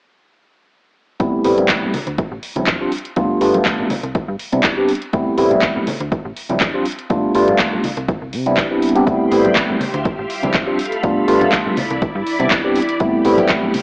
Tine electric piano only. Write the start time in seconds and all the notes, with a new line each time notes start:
1.20 G3 A3 B3 C4 E4
1.44 G3 A3 B3 C4 E4
2.56 F3 G3 C4 D4 E4
2.80 F3 G3 C4 D4 F4
3.16 G3 A3 B3 D4 F4
3.41 G3 A3 B3 D4 F4
4.52 G3 B3 C4 D4 E4
4.77 G3 B3 C4 D4 G4
5.13 G3 A3 B3 C4 E4
5.38 G3 A3 B3 C4 E4
6.49 F3 G3 C4 D4 E4
6.74 F3 G3 C4 D4 F4
7.10 G3 A3 B3 D4 F4
7.35 G3 A3 B3 D4 F4
8.46 G3 B3 C4 D4 E4
8.71 G3 B3 C4 D4 E4
8.95 G3 B3 C4 D4 G4
9.06 G3 A3 B3 C4 E4
9.31 G3 A3 B3 C4 E4
10.42 F3 G3 C4 D4 E4
10.67 F3 G3 C4 D4 F4
11.03 G3 A3 B3 D4 F4
11.27 G3 A3 B3 D4 F4
12.39 G3 B3 C4 D4 E4
12.64 G3 B3 C4 D4 G4
13.00 G3 A3 B3 C4 E4
13.25 G3 A3 B3 C4 E4